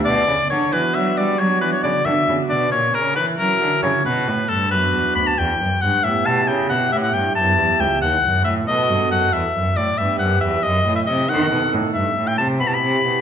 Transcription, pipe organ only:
<<
  \new Staff \with { instrumentName = "Pipe organ" } { \time 12/8 \key b \minor \tempo 4. = 91 r4. <b d' fis'>4. <b d' fis'>4. <b d' fis'>4. | r4. <cis' e' fis'>4. r4. <b d' fis'>4. | r4. <b e' g'>4. <b e' g'>4. <b e' g'>4. | r4. <b fis' a'>4. r4. <b g' b'>4. |
\key e \minor r4. <b dis' a'>4. r4. <b e' g'>4. | }
  \new Staff \with { instrumentName = "Pipe organ" } { \clef bass \time 12/8 \key b \minor b,8 cis8 d8 e8 fis8 g8 fis8 e8 cis8 d8 cis8 b,8 | ais,8 cis8 e8 fis8 d8 cis8 b,8 a,8 g,8 fis,8 e,8 d,8 | e,8 fis,8 g,8 a,8 b,8 cis8 b,8 a,8 g,8 fis,8 e,8 cis,8 | dis,8 fis,8 a,8 b,8 g,8 fis,8 e,8 fis,8 a,8 g,8 fis,8 e,8 |
\key e \minor fis,8 a,8 c8 dis8 b,8 a,8 g,8 a,8 c8 b,8 c8 b,8 | }
>>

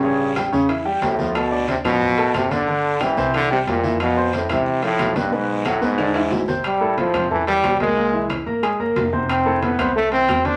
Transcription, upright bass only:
\new Staff \with { instrumentName = "Upright bass" } { \clef bass \time 4/4 \key a \minor \tempo 4 = 181 a,,4. e,4. d,4~ | d,4. a,,4. g,,4~ | g,,4. c,4. f,4~ | f,4. c,4. b,,4~ |
b,,4. e,4. a,,4~ | a,,4. e,4. c,4~ | c,4. gis,,4 fis,,8 f,,4~ | f,,4. c,4. e,4 | }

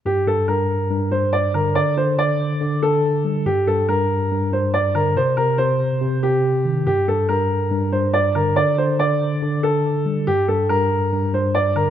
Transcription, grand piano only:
\new Staff \with { instrumentName = "Grand piano" } { \time 4/4 \key g \minor \tempo 4 = 141 g'8 a'8 bes'4. c''8 d''8 bes'8 | d''8 c''8 d''4. a'4. | g'8 a'8 bes'4. c''8 d''8 bes'8 | c''8 bes'8 c''4. g'4. |
g'8 a'8 bes'4. c''8 d''8 bes'8 | d''8 c''8 d''4. a'4. | g'8 a'8 bes'4. c''8 d''8 bes'8 | }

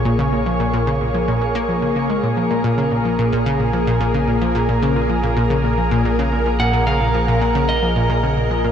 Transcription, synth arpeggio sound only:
\new Staff \with { instrumentName = "Synth arpeggio sound" } { \clef bass \time 4/4 \key ais \phrygian \tempo 4 = 110 ais,16 cis16 ais,16 eis16 ais,16 ais,16 cis16 ais,16 eis16 ais,16 ais16 ais16 eis16 cis16 cis16 gis16 | ais,16 eis16 ais,16 ais,16 cis16 ais,16 eis16 ais,16 ais,16 cis16 ais,16 eis16 ais,16 ais,16 cis16 ais,16 | eis16 ais,16 ais,16 cis16 ais,16 eis16 ais,16 ais,16 cis16 ais,16 eis16 ais,16 ais,16 cis16 ais,16 eis16 | ais,16 ais,16 cis16 ais,16 eis16 ais,16 ais,16 cis16 ais,16 eis16 ais,16 ais,16 cis16 ais,16 eis16 ais,16 | }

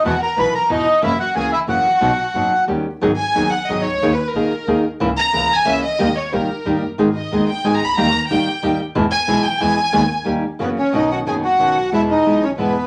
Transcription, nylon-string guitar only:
\new Staff \with { instrumentName = "Nylon-string guitar" } { \time 3/4 \key b \major \tempo 4 = 182 <b, e b e' fis'>8 r8 <b, e b e' fis'>8 r8 <b, e b e' fis'>8 r8 | <cis e ais cis' fis'>8 r8 <cis e ais cis' fis'>8 r8 <cis e ais cis' fis'>8 r8 | <b, fis b dis' fis'>8 r8 <b, fis b dis' fis'>8 r8 <dis g cis' g'>8 r8 | \key gis \minor <dis fis b dis' gis'>8 r8 <dis fis b dis' gis'>8 r8 <dis fis b dis' gis'>8 r8 |
<dis ais dis' gis'>8 r8 <dis ais dis' gis'>8 r8 <dis ais dis' gis'>8 r8 | <cis e ais cis' e'>8 r8 <cis e ais cis' e'>8 r8 <cis e ais cis' e'>8 r8 | <dis g ais dis' g'>8 r8 <dis g ais dis' g'>8 r8 <dis g ais dis' g'>8 r8 | <dis gis b dis' gis'>8 r8 <dis gis b dis' gis'>8 r8 <dis gis b dis' gis'>8 r8 |
<dis g ais dis' g'>8 r8 <dis g ais dis' g'>8 r8 <dis g ais dis' g'>8 r8 | <b, e gis b e'>8 r8 <b, e gis b e'>8 r8 <b, e gis b e'>8 r8 | <dis gis b>8 r8 <dis g ais dis' g'>8 r8 <cis e ais cis' fis'>8 r8 | \key b \major <b, dis cis' fis'>4 <b, dis cis' fis'>8 r8 <b, dis cis' fis'>8 r8 |
<b, e gis b e'>4 <b, e gis b e'>8 r8 <b, e gis b e'>8 r8 | }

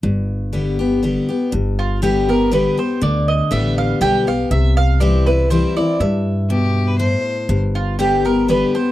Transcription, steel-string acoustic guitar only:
\new Staff \with { instrumentName = "Steel-string acoustic guitar" } { \time 3/4 \key g \mixolydian \tempo 4 = 121 << { r4 <d g b g'>8 <b g'>8 <d g b g'>8 <b g'>8 | r4 <d g b g'>8 <b g'>8 <d g b g'>8 <b g'>8 | r4 <d g b g'>4 <d g b g'>8 <b g'>8 | r4 <e g c' e'>8 <c' e'>8 <e g c' e'>8 <c' e'>8 |
r2. | r4 <d g b g'>8 <b g'>8 <d g b g'>8 <b g'>8 | } \\ { g,2 r4 | g,2 r4 | d2 r4 | c2 r4 |
g,4 b,4 a,4 | g,2 r4 | } >> }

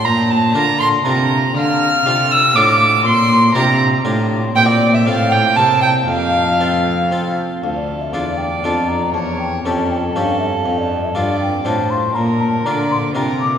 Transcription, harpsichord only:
<<
  \new Staff \with { instrumentName = "Harpsichord" } { \time 3/4 \key bes \lydian \tempo 4 = 120 r4 <d' f' bes'>4 <d' f' bes'>4 | \key f \major r4 <d' f' a'>4 <d' f' a'>4 | r4 <d' f' g'>4 <d' f' g'>4 | <c' e' g'>4 <c' f' a'>4 <c' e' bes'>4 |
r4 <c' f' a'>4 <c' f' a'>4 | \key d \minor r4 <d' f' a'>4 <d' f' a'>4 | r4 <cis' g' a'>4 <cis' g' a'>4 | r4 <d' f' a'>4 <d' f' a'>4 |
r4 <d' f' bes'>4 <d' f' bes'>4 | }
  \new Staff \with { instrumentName = "Harpsichord" } { \clef bass \time 3/4 \key bes \lydian bes,4 d4 c4 | \key f \major d4 c4 a,4 | bes,4 c4 a,4 | bes,4 a,4 c4 |
f,2~ f,8 r8 | \key d \minor d,4 e,4 f,4 | e,4 f,4 g,4 | f,4 g,4 a,4 |
bes,4 d4 c4 | }
>>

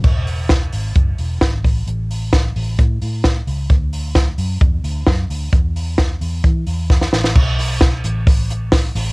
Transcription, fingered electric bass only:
\new Staff \with { instrumentName = "Fingered electric bass" } { \clef bass \time 4/4 \key e \mixolydian \tempo 4 = 131 e,,4. gis,,8 fis,,8 e,,8 gis,,8 a,,8 | a,,4. a,,8 a,8 a,4 cis,8 | d,4. fis,8 e,8 d,8 fis,8 d,8 | e,4. e,8 e8 e,4 a,,8 |
b,,4. a,,2 a,,8 | }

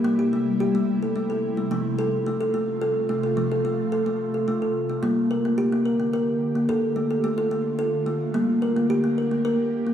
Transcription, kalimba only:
\new Staff \with { instrumentName = "Kalimba" } { \time 3/4 \key g \minor \tempo 4 = 108 << { bes16 g'16 a8 g'16 a8 a'16 a16 a'8 a16 | a8 a'8 a16 a'16 a8 a'8 a16 a'16 | a16 a'16 a8 a'16 a8 a'16 a16 a'8 a16 | bes8 bes'16 bes16 g'16 bes16 bes'16 bes16 bes'8 r16 bes16 |
a'8 a16 a'16 a16 a'16 a8 a'8 a8 | bes8 bes'16 bes16 g'16 bes16 bes'16 bes16 bes'8 r16 bes16 | } \\ { g2. | f2. | f2. | g2. |
d2. | g2. | } >> }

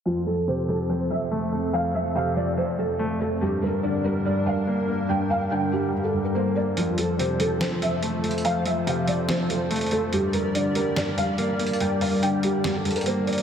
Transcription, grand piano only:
\new Staff \with { instrumentName = "Grand piano" } { \clef bass \time 4/4 \key f \major \tempo 4 = 143 f,8 f,8 c8 f8 f,8 f,8 a8 a8 | f,8 f,8 c8 f8 f,8 f,8 a8 a8 | g,8 g,8 d8 g8 g,8 g,8 bes8 bes8 | g,8 g,8 d8 g8 g,8 g,8 bes8 bes8 |
f,8 f,8 c8 f8 f,8 f,8 a8 a8 | f,8 f,8 c8 f8 f,8 f,8 a8 a8 | g,8 g,8 d8 g8 g,8 g,8 bes8 bes8 | g,8 g,8 d8 g8 g,8 g,8 bes8 bes8 | }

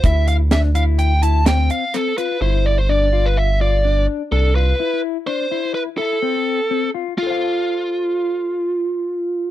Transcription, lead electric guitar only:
\new Staff \with { instrumentName = "Lead electric guitar" } { \time 5/4 \key f \lydian \tempo 4 = 126 e''8 f''8 e''8 f''8 g''8 a''8 g''8 f''8 a'8 b'8 | c''8 d''16 c''16 d''8. b'16 e''8 d''4 r8 a'8 b'8~ | b'8 r8 c''4 b'8 a'2 r8 | f'1~ f'4 | }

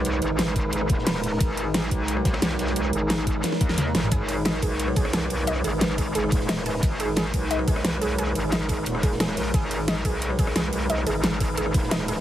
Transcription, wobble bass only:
\new Staff \with { instrumentName = "Wobble bass" } { \clef bass \time 4/4 \key gis \minor \tempo 4 = 177 b,,8 gis,,4. gis,,8 dis,,4. | gis,,4. b,,4. b,,4~ | b,,8 gis,,4. r8 dis,4 gis,,8 | gis,,4. b,,4. b,,4~ |
b,,8 gis,,4. gis,,8 dis,,4. | gis,,4. b,,4. b,,4~ | b,,8 gis,,4. dis,,4. ais,,8 | gis,,4. b,,4. b,,4~ |
b,,8 gis,,4. gis,,8 dis,,4. | }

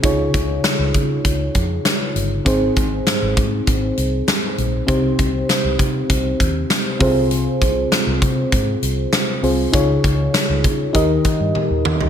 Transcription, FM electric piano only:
<<
  \new Staff \with { instrumentName = "FM electric piano" } { \time 4/4 \key aes \major \tempo 4 = 99 <ees' f' aes' des''>1 | <c' ees' aes' c''>1 | <c' ees' g' c''>2.~ <c' ees' g' c''>8 <c' f' aes' c''>8~ | <c' f' aes' c''>2.~ <c' f' aes' c''>8 <c' f' aes' c''>8 |
<ees' f' aes' des''>2 <ees' g' bes' ees''>2 | }
  \new Staff \with { instrumentName = "FM electric piano" } { \clef bass \time 4/4 \key aes \major des4. r2 r8 | aes,4. r2 r8 | c4. r2 c8~ | c4 r2. |
des4. r8 ees4. r8 | }
>>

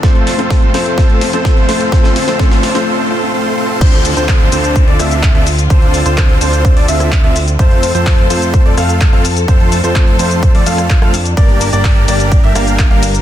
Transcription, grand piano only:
\new Staff \with { instrumentName = "Grand piano" } { \time 4/4 \key d \minor \tempo 4 = 127 c''8. c''8. c''8 c''8. c''8. c''8 | r8. c''16 c''8. c''16 r2 | c''8. c''8. c''8. d''16 e''8. e''16 r8 | c''8. c''8. c''8. d''16 e''8. e''16 r8 |
c''8. c''8. c''8. d''16 f''8. f''16 r8 | c''8. c''8. c''8. d''16 f''8. f''16 r8 | d''8. d''8. d''8. e''16 f''8. f''16 r8 | }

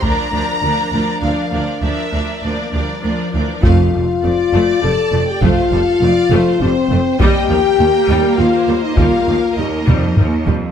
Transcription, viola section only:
\new Staff \with { instrumentName = "Viola section" } { \clef bass \time 3/4 \key f \major \tempo 4 = 101 << { d'8 d'8 d'8 d'8 d'8 d'8 | d'8 d'8 d'8 d'8 d'8 d'8 | a2.~ | a2. |
bes2.~ | bes2~ bes8 r8 | } \\ { f8 f8 f8 f8 f8 f8 | f8 f8 f8 f8 f8 f8 | a8 g8 a8 a8 g8 a8 | a8 g8 a8 a8 g8 a8 |
g8 f8 g8 g8 f8 g8 | g8 f8 g8 g8 f8 g8 | } >> }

